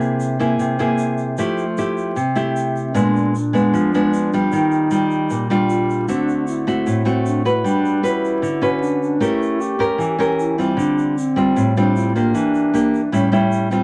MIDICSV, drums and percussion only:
0, 0, Header, 1, 2, 480
1, 0, Start_track
1, 0, Key_signature, -1, "minor"
1, 0, Tempo, 391645
1, 1689, Time_signature, 4, 2, 24, 8
1, 16955, End_track
2, 0, Start_track
2, 0, Title_t, "Drums"
2, 13, Note_on_c, 9, 82, 25
2, 135, Note_off_c, 9, 82, 0
2, 246, Note_on_c, 9, 82, 68
2, 369, Note_off_c, 9, 82, 0
2, 496, Note_on_c, 9, 82, 26
2, 618, Note_off_c, 9, 82, 0
2, 730, Note_on_c, 9, 82, 55
2, 853, Note_off_c, 9, 82, 0
2, 971, Note_on_c, 9, 82, 25
2, 1094, Note_off_c, 9, 82, 0
2, 1205, Note_on_c, 9, 82, 57
2, 1327, Note_off_c, 9, 82, 0
2, 1444, Note_on_c, 9, 82, 26
2, 1567, Note_off_c, 9, 82, 0
2, 1687, Note_on_c, 9, 82, 60
2, 1810, Note_off_c, 9, 82, 0
2, 1932, Note_on_c, 9, 82, 24
2, 2055, Note_off_c, 9, 82, 0
2, 2178, Note_on_c, 9, 82, 69
2, 2300, Note_off_c, 9, 82, 0
2, 2420, Note_on_c, 9, 82, 25
2, 2542, Note_off_c, 9, 82, 0
2, 2653, Note_on_c, 9, 82, 56
2, 2776, Note_off_c, 9, 82, 0
2, 2894, Note_on_c, 9, 82, 27
2, 3017, Note_off_c, 9, 82, 0
2, 3142, Note_on_c, 9, 82, 57
2, 3265, Note_off_c, 9, 82, 0
2, 3387, Note_on_c, 9, 82, 26
2, 3510, Note_off_c, 9, 82, 0
2, 3621, Note_on_c, 9, 82, 62
2, 3743, Note_off_c, 9, 82, 0
2, 3877, Note_on_c, 9, 82, 25
2, 3999, Note_off_c, 9, 82, 0
2, 4108, Note_on_c, 9, 82, 67
2, 4230, Note_off_c, 9, 82, 0
2, 4352, Note_on_c, 9, 82, 26
2, 4474, Note_off_c, 9, 82, 0
2, 4588, Note_on_c, 9, 82, 54
2, 4710, Note_off_c, 9, 82, 0
2, 4828, Note_on_c, 9, 82, 25
2, 4950, Note_off_c, 9, 82, 0
2, 5068, Note_on_c, 9, 82, 61
2, 5191, Note_off_c, 9, 82, 0
2, 5308, Note_on_c, 9, 82, 26
2, 5431, Note_off_c, 9, 82, 0
2, 5543, Note_on_c, 9, 82, 60
2, 5666, Note_off_c, 9, 82, 0
2, 5782, Note_on_c, 9, 82, 26
2, 5904, Note_off_c, 9, 82, 0
2, 6017, Note_on_c, 9, 82, 66
2, 6140, Note_off_c, 9, 82, 0
2, 6260, Note_on_c, 9, 82, 24
2, 6382, Note_off_c, 9, 82, 0
2, 6499, Note_on_c, 9, 82, 61
2, 6622, Note_off_c, 9, 82, 0
2, 6746, Note_on_c, 9, 82, 26
2, 6869, Note_off_c, 9, 82, 0
2, 6982, Note_on_c, 9, 82, 55
2, 7104, Note_off_c, 9, 82, 0
2, 7228, Note_on_c, 9, 82, 28
2, 7351, Note_off_c, 9, 82, 0
2, 7460, Note_on_c, 9, 82, 60
2, 7582, Note_off_c, 9, 82, 0
2, 7704, Note_on_c, 9, 82, 27
2, 7826, Note_off_c, 9, 82, 0
2, 7936, Note_on_c, 9, 82, 67
2, 8058, Note_off_c, 9, 82, 0
2, 8191, Note_on_c, 9, 82, 26
2, 8314, Note_off_c, 9, 82, 0
2, 8419, Note_on_c, 9, 82, 58
2, 8542, Note_off_c, 9, 82, 0
2, 8658, Note_on_c, 9, 82, 25
2, 8780, Note_off_c, 9, 82, 0
2, 8898, Note_on_c, 9, 82, 61
2, 9020, Note_off_c, 9, 82, 0
2, 9140, Note_on_c, 9, 82, 27
2, 9263, Note_off_c, 9, 82, 0
2, 9386, Note_on_c, 9, 82, 61
2, 9508, Note_off_c, 9, 82, 0
2, 9623, Note_on_c, 9, 82, 26
2, 9746, Note_off_c, 9, 82, 0
2, 9862, Note_on_c, 9, 82, 64
2, 9984, Note_off_c, 9, 82, 0
2, 10109, Note_on_c, 9, 82, 26
2, 10231, Note_off_c, 9, 82, 0
2, 10341, Note_on_c, 9, 82, 60
2, 10464, Note_off_c, 9, 82, 0
2, 10583, Note_on_c, 9, 82, 26
2, 10706, Note_off_c, 9, 82, 0
2, 10826, Note_on_c, 9, 82, 59
2, 10948, Note_off_c, 9, 82, 0
2, 11066, Note_on_c, 9, 82, 26
2, 11189, Note_off_c, 9, 82, 0
2, 11303, Note_on_c, 9, 82, 60
2, 11426, Note_off_c, 9, 82, 0
2, 11545, Note_on_c, 9, 82, 25
2, 11667, Note_off_c, 9, 82, 0
2, 11779, Note_on_c, 9, 82, 67
2, 11901, Note_off_c, 9, 82, 0
2, 12025, Note_on_c, 9, 82, 25
2, 12147, Note_off_c, 9, 82, 0
2, 12261, Note_on_c, 9, 82, 57
2, 12383, Note_off_c, 9, 82, 0
2, 12509, Note_on_c, 9, 82, 26
2, 12632, Note_off_c, 9, 82, 0
2, 12742, Note_on_c, 9, 82, 58
2, 12865, Note_off_c, 9, 82, 0
2, 12984, Note_on_c, 9, 82, 25
2, 13107, Note_off_c, 9, 82, 0
2, 13227, Note_on_c, 9, 82, 60
2, 13349, Note_off_c, 9, 82, 0
2, 13459, Note_on_c, 9, 82, 27
2, 13581, Note_off_c, 9, 82, 0
2, 13703, Note_on_c, 9, 82, 62
2, 13826, Note_off_c, 9, 82, 0
2, 13940, Note_on_c, 9, 82, 26
2, 14062, Note_off_c, 9, 82, 0
2, 14179, Note_on_c, 9, 82, 60
2, 14302, Note_off_c, 9, 82, 0
2, 14426, Note_on_c, 9, 82, 25
2, 14548, Note_off_c, 9, 82, 0
2, 14665, Note_on_c, 9, 82, 61
2, 14787, Note_off_c, 9, 82, 0
2, 14905, Note_on_c, 9, 82, 25
2, 15027, Note_off_c, 9, 82, 0
2, 15136, Note_on_c, 9, 82, 61
2, 15258, Note_off_c, 9, 82, 0
2, 15375, Note_on_c, 9, 82, 26
2, 15497, Note_off_c, 9, 82, 0
2, 15623, Note_on_c, 9, 82, 67
2, 15745, Note_off_c, 9, 82, 0
2, 15867, Note_on_c, 9, 82, 25
2, 15990, Note_off_c, 9, 82, 0
2, 16100, Note_on_c, 9, 82, 59
2, 16223, Note_off_c, 9, 82, 0
2, 16340, Note_on_c, 9, 82, 26
2, 16463, Note_off_c, 9, 82, 0
2, 16569, Note_on_c, 9, 82, 60
2, 16692, Note_off_c, 9, 82, 0
2, 16807, Note_on_c, 9, 82, 27
2, 16930, Note_off_c, 9, 82, 0
2, 16955, End_track
0, 0, End_of_file